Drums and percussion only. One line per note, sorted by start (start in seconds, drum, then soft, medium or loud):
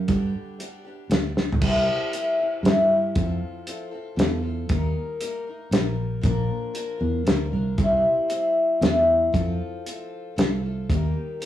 0.08 kick loud
0.08 closed hi-hat medium
0.60 closed hi-hat medium
1.11 snare medium
1.11 closed hi-hat medium
1.37 snare medium
1.52 floor tom medium
1.62 kick loud
1.62 crash loud
2.13 closed hi-hat medium
2.65 snare medium
2.65 closed hi-hat medium
3.15 kick loud
3.15 closed hi-hat medium
3.67 closed hi-hat medium
4.19 snare medium
4.19 closed hi-hat medium
4.69 kick loud
4.69 closed hi-hat medium
5.21 closed hi-hat medium
5.72 snare medium
5.72 closed hi-hat medium
6.23 kick loud
6.23 closed hi-hat medium
6.75 closed hi-hat medium
7.27 snare medium
7.27 closed hi-hat medium
7.78 kick loud
7.78 closed hi-hat medium
8.30 closed hi-hat medium
8.82 snare medium
8.82 closed hi-hat medium
9.34 kick loud
9.34 closed hi-hat medium
9.86 closed hi-hat medium
10.38 snare medium
10.38 closed hi-hat medium
10.90 kick loud
10.90 closed hi-hat medium
11.42 closed hi-hat medium